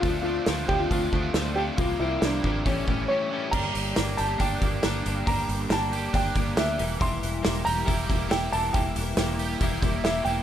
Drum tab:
CC |--------|--------|x-------|--------|
HH |o-o-o-o-|o-o-o---|-ooooooo|oooooooo|
SD |--o---o-|--o-----|--o---o-|--o---o-|
BD |o--ooo--|o--ooo--|o---oo--|o---oo--|

CC |--------|--------|
HH |oooooooo|oooooooo|
SD |--o---o-|--o---o-|
BD |o---oo--|o---oo--|